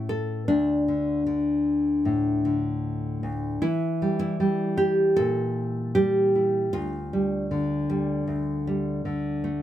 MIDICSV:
0, 0, Header, 1, 2, 480
1, 0, Start_track
1, 0, Tempo, 778210
1, 300, Time_signature, 4, 2, 24, 8
1, 5935, End_track
2, 0, Start_track
2, 0, Title_t, "Nylon-string guitar"
2, 0, Program_c, 0, 24
2, 0, Note_on_c, 0, 45, 59
2, 0, Note_on_c, 0, 57, 50
2, 0, Note_on_c, 0, 61, 44
2, 0, Note_on_c, 0, 64, 43
2, 57, Note_on_c, 0, 69, 83
2, 275, Note_off_c, 0, 57, 0
2, 275, Note_off_c, 0, 61, 0
2, 275, Note_off_c, 0, 64, 0
2, 294, Note_off_c, 0, 69, 0
2, 296, Note_on_c, 0, 62, 77
2, 300, Note_on_c, 0, 38, 65
2, 302, Note_off_c, 0, 45, 0
2, 545, Note_on_c, 0, 50, 46
2, 773, Note_off_c, 0, 50, 0
2, 781, Note_on_c, 0, 50, 42
2, 1266, Note_on_c, 0, 45, 55
2, 1504, Note_off_c, 0, 50, 0
2, 1511, Note_on_c, 0, 50, 42
2, 1985, Note_off_c, 0, 38, 0
2, 1993, Note_on_c, 0, 38, 58
2, 2230, Note_off_c, 0, 62, 0
2, 2231, Note_on_c, 0, 64, 84
2, 2232, Note_off_c, 0, 45, 0
2, 2233, Note_off_c, 0, 38, 0
2, 2235, Note_off_c, 0, 50, 0
2, 2235, Note_on_c, 0, 52, 74
2, 2480, Note_on_c, 0, 55, 46
2, 2580, Note_off_c, 0, 64, 0
2, 2587, Note_on_c, 0, 64, 83
2, 2711, Note_off_c, 0, 55, 0
2, 2714, Note_on_c, 0, 55, 63
2, 2945, Note_on_c, 0, 67, 82
2, 3183, Note_off_c, 0, 67, 0
2, 3186, Note_on_c, 0, 69, 104
2, 3201, Note_on_c, 0, 46, 59
2, 3431, Note_off_c, 0, 64, 0
2, 3667, Note_off_c, 0, 69, 0
2, 3669, Note_on_c, 0, 67, 83
2, 3673, Note_off_c, 0, 55, 0
2, 3676, Note_on_c, 0, 55, 56
2, 3920, Note_on_c, 0, 64, 41
2, 4125, Note_off_c, 0, 52, 0
2, 4127, Note_off_c, 0, 46, 0
2, 4127, Note_off_c, 0, 64, 0
2, 4151, Note_off_c, 0, 67, 0
2, 4151, Note_on_c, 0, 65, 89
2, 4156, Note_on_c, 0, 38, 69
2, 4169, Note_off_c, 0, 55, 0
2, 4399, Note_on_c, 0, 55, 48
2, 4632, Note_on_c, 0, 50, 62
2, 4867, Note_off_c, 0, 55, 0
2, 4870, Note_on_c, 0, 55, 53
2, 5097, Note_off_c, 0, 38, 0
2, 5104, Note_on_c, 0, 38, 62
2, 5343, Note_off_c, 0, 55, 0
2, 5350, Note_on_c, 0, 55, 51
2, 5576, Note_off_c, 0, 50, 0
2, 5583, Note_on_c, 0, 50, 61
2, 5820, Note_off_c, 0, 65, 0
2, 5822, Note_on_c, 0, 57, 49
2, 5935, Note_off_c, 0, 38, 0
2, 5935, Note_off_c, 0, 50, 0
2, 5935, Note_off_c, 0, 55, 0
2, 5935, Note_off_c, 0, 57, 0
2, 5935, End_track
0, 0, End_of_file